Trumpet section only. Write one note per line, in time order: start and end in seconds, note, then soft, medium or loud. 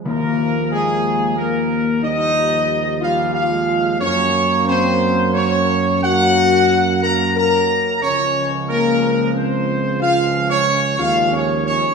0.06 0.67 A#4 loud
0.71 1.33 G#4 loud
1.37 2.00 A#4 medium
2.03 2.98 D#5 loud
3.03 3.33 F5 loud
3.35 3.96 F5 loud
4.00 4.62 C#5 loud
4.67 5.30 C5 loud
5.34 5.98 C#5 loud
6.02 6.98 F#5 loud
7.03 7.34 A#5 loud
7.36 7.99 A#5 loud
8.03 8.52 C#5 loud
8.69 9.31 A#4 loud
9.35 10.01 C5 loud
10.01 10.47 F5 loud
10.50 10.96 C#5 loud
11.00 11.31 F5 loud
11.33 11.64 C#5 medium
11.66 11.94 C#5 loud